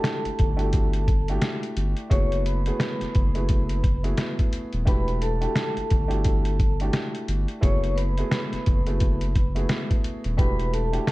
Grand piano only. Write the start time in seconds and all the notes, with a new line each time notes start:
Already playing: A3 D4 E4 F#4 G4
0.56 A3 D4 E4 F#4 G4
1.29 A3 D4 E4 F#4 G4
2.09 A3 B3 E4 F#4 G#4
2.67 A3 B3 E4 F#4 G#4
3.35 A3 B3 E4 F#4 G#4
4.03 A3 B3 E4 F#4 G#4
4.85 A3 D4 E4 F#4 G4
5.41 A3 D4 E4 F#4 G4
6.08 A3 D4 E4 F#4 G4
6.81 A3 D4 E4 F#4 G4
7.61 A3 B3 E4 F#4 G#4
8.18 A3 B3 E4 F#4 G#4
8.87 A3 B3 E4 F#4 G#4
9.55 A3 B3 E4 F#4 G#4
10.37 A3 D4 E4 F#4 G4
10.92 A3 D4 E4 F#4 G4